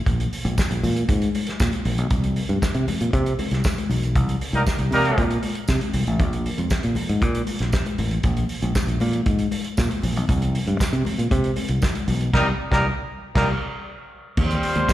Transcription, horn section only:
4.53 4.62 G3 medium
4.53 4.62 A#3 medium
4.53 4.62 D#4 medium
4.53 4.62 A#4 medium
4.92 5.25 G3 medium
4.92 5.25 A#3 loud
4.92 5.25 D#4 loud
4.92 5.25 A#4 loud
12.33 12.46 G3 loud
12.33 12.46 A#3 medium
12.33 12.46 D#4 loud
12.33 12.46 A#4 medium
12.71 12.85 G3 medium
12.71 12.84 A#3 medium
12.71 12.84 D#4 medium
12.71 12.84 A#4 loud
13.35 13.48 G3 medium
13.35 13.48 A#3 medium
13.35 13.49 D#4 medium
13.35 13.48 A#4 medium
14.37 14.93 G3 medium
14.37 14.93 C4 medium
14.37 14.93 F4 medium
14.37 14.93 C5 loud

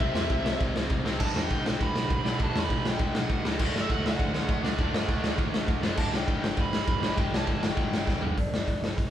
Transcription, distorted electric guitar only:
0.00 1.04 C3 medium
0.00 1.06 G3 medium
0.00 1.04 C4 medium
1.05 1.21 C3 medium
1.05 1.23 G3 medium
1.05 1.19 C4 loud
1.20 2.24 G2 medium
1.20 2.25 D3 loud
1.20 2.24 G3 loud
2.25 2.38 G2 medium
2.25 2.40 D3 medium
2.25 2.39 G3 loud
2.39 3.43 G2 loud
2.39 3.44 D3 medium
2.39 3.44 G3 loud
3.45 3.60 G2 medium
3.45 3.57 D3 medium
3.45 3.59 G3 medium
3.58 4.62 D3 loud
3.58 4.63 A3 loud
3.58 4.63 D4 loud
4.63 4.78 D3 medium
4.63 4.79 A3 medium
4.63 4.82 D4 loud
4.79 5.82 D3 medium
4.79 5.83 A3 medium
4.79 5.82 D4 loud
5.83 5.98 D3 medium
5.83 5.97 A3 loud
5.83 8.87 D4 loud
5.97 7.05 G2 loud
5.97 7.02 D3 loud
6.01 7.01 G3 loud
7.01 7.15 G2 medium
7.01 7.17 D3 medium
7.01 7.19 G3 medium
7.16 8.20 G2 medium
7.16 8.21 D3 loud
7.16 8.20 G3 loud
8.21 8.37 G2 medium
8.21 8.36 D3 medium
8.21 8.35 G3 loud

